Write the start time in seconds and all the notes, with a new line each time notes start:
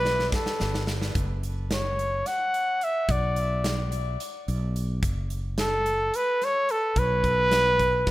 Already playing: B1 B4
0.05 snare
0.19 snare
0.32 A4, kick, snare
0.46 snare
0.60 G1, snare
0.74 snare
0.87 snare
1.02 snare
1.15 F#1, kick, closed hi-hat
1.43 closed hi-hat
1.71 C#5, snare, closed hi-hat
1.99 closed hi-hat
2.26 F#5, snare, closed hi-hat
2.54 closed hi-hat
2.81 E5, closed hi-hat
3.09 B1 D5, kick, closed hi-hat
3.36 closed hi-hat
3.64 snare, closed hi-hat
3.92 closed hi-hat
4.20 closed hi-hat
4.48 B1, closed hi-hat
4.76 closed hi-hat
5.02 F#1, kick, closed hi-hat
5.30 closed hi-hat
5.58 A4, snare, closed hi-hat
5.86 closed hi-hat
6.14 B4, closed hi-hat
6.42 C#5, snare, closed hi-hat
6.69 A4, closed hi-hat
6.96 B1 B4, kick, closed hi-hat
7.24 kick, closed hi-hat
7.51 snare, closed hi-hat
7.80 kick, closed hi-hat
8.07 kick, snare